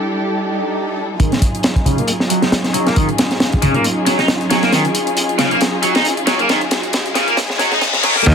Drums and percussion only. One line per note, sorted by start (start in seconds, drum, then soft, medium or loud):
1.20 kick loud
1.20 closed hi-hat medium
1.20 closed hi-hat soft
1.32 snare soft
1.32 closed hi-hat soft
1.42 kick medium
1.42 closed hi-hat medium
1.55 closed hi-hat soft
1.63 snare loud
1.63 closed hi-hat medium
1.63 closed hi-hat soft
1.76 kick medium
1.76 closed hi-hat soft
1.86 kick medium
1.86 closed hi-hat medium
1.98 closed hi-hat soft
2.07 closed hi-hat medium
2.07 closed hi-hat soft
2.20 snare soft
2.30 closed hi-hat medium
2.42 snare soft
2.42 closed hi-hat soft
2.52 snare loud
2.52 closed hi-hat medium
2.52 closed hi-hat soft
2.64 snare soft
2.64 closed hi-hat soft
2.74 closed hi-hat medium
2.87 snare soft
2.87 closed hi-hat soft
2.96 kick loud
2.96 closed hi-hat soft
2.96 closed hi-hat medium
3.09 closed hi-hat soft
3.18 snare medium
3.18 closed hi-hat medium
3.31 snare soft
3.31 closed hi-hat soft
3.40 snare loud
3.40 closed hi-hat soft
3.40 closed hi-hat medium
3.53 kick loud
3.53 closed hi-hat soft
3.62 kick loud
3.62 closed hi-hat medium
3.74 closed hi-hat soft
3.84 closed hi-hat soft
3.84 closed hi-hat medium
4.06 snare soft
4.06 closed hi-hat medium
4.19 snare soft
4.19 closed hi-hat soft
4.28 snare loud
4.28 closed hi-hat soft
4.28 closed hi-hat medium
4.41 closed hi-hat soft
4.50 snare medium
4.50 closed hi-hat medium
4.63 snare soft
4.63 closed hi-hat soft
4.72 snare soft
4.72 closed hi-hat soft
4.72 closed hi-hat medium
4.85 closed hi-hat soft
4.95 closed hi-hat medium
5.07 closed hi-hat soft
5.17 closed hi-hat soft
5.17 closed hi-hat medium
5.29 closed hi-hat soft
5.39 snare medium
5.39 closed hi-hat medium
5.51 closed hi-hat soft
5.61 snare medium
5.61 closed hi-hat soft
5.61 closed hi-hat medium
5.83 closed hi-hat medium
5.95 snare medium
5.95 closed hi-hat soft
6.05 closed hi-hat soft
6.05 closed hi-hat medium
6.17 closed hi-hat soft
6.27 snare medium
6.27 closed hi-hat medium
6.39 closed hi-hat soft
6.49 snare medium
6.49 closed hi-hat soft
6.49 closed hi-hat medium
6.61 closed hi-hat soft
6.71 snare medium
6.71 closed hi-hat medium
6.83 closed hi-hat soft
6.93 snare medium
6.93 closed hi-hat soft
6.93 closed hi-hat medium
7.06 closed hi-hat soft
7.15 snare medium
7.15 closed hi-hat medium
7.28 closed hi-hat soft
7.37 snare medium
7.37 closed hi-hat loud
7.37 closed hi-hat soft
7.50 snare medium
7.59 snare loud
7.59 closed hi-hat medium
7.72 snare medium
7.72 closed hi-hat soft
7.81 snare loud
7.81 closed hi-hat medium
7.81 closed hi-hat soft
7.93 snare medium
7.93 closed hi-hat soft
8.03 snare loud
8.03 closed hi-hat medium
8.16 snare loud
8.16 closed hi-hat soft
8.26 kick loud
8.26 closed hi-hat medium
8.26 closed hi-hat soft
8.26 crash medium